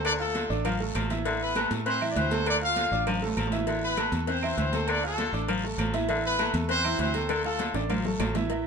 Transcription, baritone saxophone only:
0.05 0.21 D3 loud
0.35 0.51 D3 medium
0.65 0.81 F3 medium
0.95 1.11 F3 medium
1.25 1.41 D3 loud
1.56 1.72 E3 loud
1.86 2.02 E3 medium
2.16 2.32 E3 medium
2.46 2.62 D3 loud
2.77 2.93 D3 medium
3.07 3.23 F3 medium
3.38 3.54 F3 medium
3.68 3.83 D3 medium
3.98 4.14 E3 medium
4.28 4.44 E3 medium
4.57 4.73 E3 medium
4.88 5.04 D3 loud
5.18 5.34 D3 medium
5.48 5.64 F3 medium
5.78 5.94 F3 medium
6.09 6.25 D3 loud
6.39 6.55 E3 medium
6.69 6.85 E3 medium
6.99 7.15 E3 medium
7.29 7.45 D3 loud
7.59 7.75 D3 medium
7.90 8.06 F3 medium
8.20 8.36 F3 medium

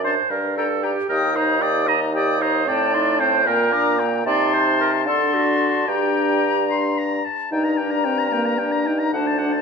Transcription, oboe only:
0.06 0.15 A5 soft
0.58 0.67 G5 soft
0.83 0.92 G5 soft
1.08 1.37 G5 soft
1.36 1.63 D#5 soft
1.62 1.89 G5 soft
1.87 2.14 D#5 soft
2.15 2.43 G5 soft
2.42 2.68 D#5 soft
2.68 2.96 G5 medium
2.95 3.21 A5 soft
3.20 3.46 G5 soft
3.46 3.75 G5 soft
3.73 4.00 A#5 soft
3.99 4.25 G5 soft
4.26 5.02 A5 medium
5.06 5.90 A5 soft
5.88 6.65 G5 soft
6.70 7.00 C6 medium
6.98 7.26 A#5 soft
7.25 7.51 A5 soft
7.52 7.66 G5 soft
7.64 7.79 A#5 soft
7.77 7.92 G5 soft
7.91 8.06 A#5 soft
8.04 8.20 G5 soft
8.19 8.34 A#5 soft
8.32 8.47 G5 soft
8.45 8.60 A#5 soft
8.58 8.73 G5 soft
8.72 8.88 A#5 soft
8.87 9.01 G5 soft
8.99 9.12 A#5 soft
9.13 9.28 F#5 soft
9.27 9.40 A5 soft
9.38 9.54 F#5 soft
9.52 9.62 A5 soft

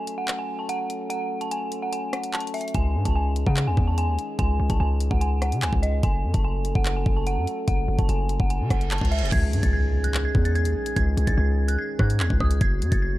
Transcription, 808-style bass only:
2.75 2.97 C#2 loud
2.95 3.05 G#2 loud
3.05 3.45 C#2 loud
3.47 3.69 C#3 loud
3.67 3.77 D#2 loud
3.77 4.10 E2 loud
4.08 4.18 D#2 loud
4.39 4.59 C#2 loud
4.60 4.69 C#2 loud
4.70 4.79 C2 loud
4.80 5.10 C#2 loud
5.11 5.54 C#2 loud
5.52 5.64 C#3 loud
5.62 5.72 C#2 loud
5.73 6.02 C#2 loud
6.03 6.25 F#1 loud
6.24 6.34 F#2 loud
6.34 6.74 F#1 loud
6.75 7.05 F#1 loud
7.06 7.38 F#1 loud
7.37 7.47 F#2 loud
7.68 7.88 F#1 loud
7.88 7.98 F#1 loud
7.99 8.08 F#1 loud
8.09 8.38 F#1 loud
8.40 8.62 F#1 loud
8.60 8.70 C#3 loud
8.70 9.00 F#1 loud
9.01 9.23 C#2 loud
9.22 9.32 E1 loud
9.32 9.54 C#2 loud
9.53 9.62 G#2 loud
9.63 10.32 C#2 loud
10.35 10.67 E2 loud
10.66 10.75 D#2 loud
10.97 11.16 C#2 loud
11.17 11.27 C#2 loud
11.27 11.37 C2 loud
11.38 11.77 C#2 loud
11.99 12.21 G#2 loud
12.20 12.30 E2 loud
12.30 12.40 C#2 loud
12.40 12.60 C#2 loud
12.61 12.83 F#1 loud
12.81 12.91 F#2 loud
12.92 13.18 F#1 loud

